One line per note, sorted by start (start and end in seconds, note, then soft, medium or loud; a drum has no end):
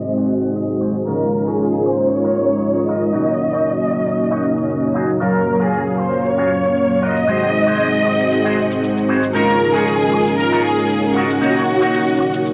0.00 1.04 G#3 medium
0.00 1.04 C4 medium
0.00 1.05 D#4 medium
0.00 1.05 F#4 medium
0.00 1.06 F#4 medium
0.00 1.05 C5 medium
0.00 1.06 C5 medium
0.00 0.82 D#5 loud
0.00 1.05 G#5 medium
0.05 shaker soft
0.17 0.30 F#4 medium
0.17 0.30 G#4 medium
0.17 0.30 C5 loud
0.17 shaker soft
0.30 0.54 F#5 medium
0.43 muted clean electric guitar stroke soft
0.43 shaker medium
0.55 1.04 D#5 medium
0.55 muted clean electric guitar stroke soft
0.55 shaker soft
0.70 shaker soft
0.81 0.95 F#4 medium
0.81 0.95 G#4 medium
0.81 0.96 C5 medium
0.96 shaker medium
1.07 3.11 G#3 medium
1.07 3.11 C#4 medium
1.07 3.12 C#4 medium
1.07 1.27 D#4 loud
1.07 3.12 D#4 medium
1.07 1.27 F4 loud
1.07 3.12 F4 medium
1.07 3.13 F4 medium
1.07 1.44 A#4 medium
1.07 3.12 A#4 medium
1.07 1.27 A#4 loud
1.07 3.12 A#4 medium
1.07 1.28 C#5 loud
1.07 5.17 D#5 medium
1.07 shaker soft
1.22 shaker soft
1.46 1.66 D#4 medium
1.46 1.66 F4 medium
1.46 1.85 G#4 medium
1.46 1.66 A#4 medium
1.46 1.66 C#5 medium
1.46 shaker medium
1.60 shaker soft
1.73 shaker soft
1.84 2.11 C5 medium
1.84 muted clean electric guitar stroke medium
1.98 muted clean electric guitar stroke soft
1.98 shaker medium
2.11 2.89 C#5 loud
2.11 shaker soft
2.24 2.36 D#4 loud
2.24 2.37 F4 medium
2.24 2.37 A#4 medium
2.24 2.37 C#5 loud
2.24 shaker soft
2.50 muted clean electric guitar stroke soft
2.50 shaker medium
2.62 muted clean electric guitar stroke soft
2.62 shaker soft
2.77 shaker soft
2.88 3.02 D#4 medium
2.88 3.02 F4 medium
2.88 3.02 A#4 medium
2.88 3.03 C#5 medium
2.88 4.96 D#5 loud
3.02 shaker medium
3.13 7.24 F#3 medium
3.13 5.18 A#3 medium
3.13 5.18 C#4 medium
3.13 5.19 C#4 medium
3.13 3.34 D#4 loud
3.13 5.18 D#4 medium
3.13 3.34 F#4 medium
3.13 5.19 F#4 medium
3.13 3.35 C#5 loud
3.13 5.19 C#5 medium
3.13 shaker soft
3.28 shaker soft
3.53 3.73 D#4 medium
3.53 3.73 F#4 medium
3.53 3.73 C#5 medium
3.53 shaker medium
3.66 shaker soft
3.80 shaker soft
3.91 muted clean electric guitar stroke medium
4.05 muted clean electric guitar stroke soft
4.05 shaker medium
4.18 shaker soft
4.31 4.43 D#4 loud
4.31 4.44 F#4 medium
4.31 4.44 C#5 loud
4.31 shaker soft
4.56 muted clean electric guitar stroke soft
4.56 shaker medium
4.69 muted clean electric guitar stroke soft
4.69 shaker soft
4.83 shaker soft
4.94 5.08 D#4 medium
4.94 5.09 F#4 medium
4.94 5.09 G#4 medium
5.09 shaker medium
5.20 7.26 F#3 medium
5.20 7.25 A#3 medium
5.20 7.26 A#3 medium
5.20 7.25 C#4 medium
5.20 5.41 F4 loud
5.20 5.41 F#4 loud
5.20 5.58 A#4 medium
5.20 5.41 A#4 loud
5.20 7.26 C#5 medium
5.20 7.25 F5 medium
5.20 7.27 F5 medium
5.20 shaker soft
5.35 shaker soft
5.60 5.79 F4 medium
5.60 5.80 F#4 medium
5.60 5.99 G#4 medium
5.60 5.80 A#4 medium
5.60 shaker medium
5.73 shaker soft
5.87 shaker soft
5.98 6.23 C5 medium
5.98 muted clean electric guitar stroke medium
6.12 muted clean electric guitar stroke soft
6.12 shaker medium
6.25 7.02 C#5 loud
6.25 shaker medium
6.38 6.50 F4 loud
6.38 6.51 F#4 medium
6.38 6.51 G#4 loud
6.38 shaker soft
6.63 muted clean electric guitar stroke soft
6.63 shaker medium
6.76 muted clean electric guitar stroke soft
6.76 shaker soft
6.90 shaker soft
7.02 7.16 F4 medium
7.02 7.16 F#4 medium
7.02 7.17 A#4 medium
7.02 9.10 D#5 loud
7.16 shaker medium
7.27 9.32 G#3 medium
7.27 9.32 C4 medium
7.27 9.33 C4 medium
7.27 9.32 D#4 medium
7.27 7.48 F#4 loud
7.27 9.32 F#4 medium
7.27 7.48 G#4 loud
7.27 9.33 G#4 medium
7.27 7.48 C5 loud
7.27 9.33 C5 medium
7.27 9.33 F#5 medium
7.27 shaker medium
7.42 shaker soft
7.66 7.86 F#4 medium
7.66 7.87 G#4 medium
7.66 7.87 C5 medium
7.66 shaker medium
7.80 shaker medium
7.94 shaker soft
8.05 muted clean electric guitar stroke medium
8.19 muted clean electric guitar stroke soft
8.19 shaker medium
8.32 shaker medium
8.44 8.57 F#4 loud
8.44 8.57 G#4 medium
8.44 8.58 C5 loud
8.44 shaker soft
8.70 muted clean electric guitar stroke soft
8.70 shaker medium
8.82 muted clean electric guitar stroke soft
8.82 shaker medium
8.98 shaker soft
9.08 9.22 F#4 medium
9.08 9.23 G#4 medium
9.08 9.23 C5 medium
9.23 shaker medium
9.34 11.39 G#3 medium
9.34 11.39 C#4 medium
9.34 12.53 C#4 medium
9.34 9.55 D#4 loud
9.34 11.39 D#4 medium
9.34 9.55 F4 loud
9.34 11.40 F4 medium
9.34 11.39 F4 medium
9.34 9.72 A#4 loud
9.34 11.40 A#4 medium
9.34 9.55 A#4 loud
9.34 11.40 A#4 medium
9.34 9.55 C#5 loud
9.34 11.40 D#5 medium
9.34 shaker medium
9.49 shaker soft
9.74 9.93 D#4 medium
9.74 9.94 F4 medium
9.74 10.38 G#4 loud
9.74 9.94 A#4 medium
9.74 9.94 C#5 medium
9.74 shaker medium
9.87 shaker medium
10.01 shaker soft
10.12 muted clean electric guitar stroke medium
10.26 muted clean electric guitar stroke soft
10.26 shaker medium
10.38 10.62 A#4 loud
10.38 shaker medium
10.52 10.64 D#4 loud
10.52 10.65 F4 medium
10.52 10.65 A#4 medium
10.52 10.65 C#5 loud
10.52 shaker soft
10.64 11.12 G#4 medium
10.78 muted clean electric guitar stroke soft
10.78 shaker medium
10.90 muted clean electric guitar stroke soft
10.90 shaker medium
11.05 shaker soft
11.15 11.29 D#4 medium
11.15 11.30 F4 medium
11.15 12.53 F#4 medium
11.15 11.30 A#4 medium
11.15 11.30 C#5 medium
11.30 shaker medium
11.41 12.53 A#3 medium
11.41 12.53 C#4 medium
11.41 11.62 D#4 loud
11.41 12.53 D#4 medium
11.41 12.53 F#4 medium
11.41 11.62 F#4 loud
11.41 12.53 F#4 medium
11.41 12.53 C#5 medium
11.41 11.62 C#5 loud
11.41 12.53 D#5 medium
11.41 shaker medium
11.56 shaker soft
11.81 12.00 D#4 medium
11.81 12.01 F#4 medium
11.81 12.01 C#5 medium
11.81 shaker medium
11.94 shaker medium
12.08 shaker soft
12.19 muted clean electric guitar stroke medium
12.33 muted clean electric guitar stroke soft
12.33 shaker medium
12.46 shaker medium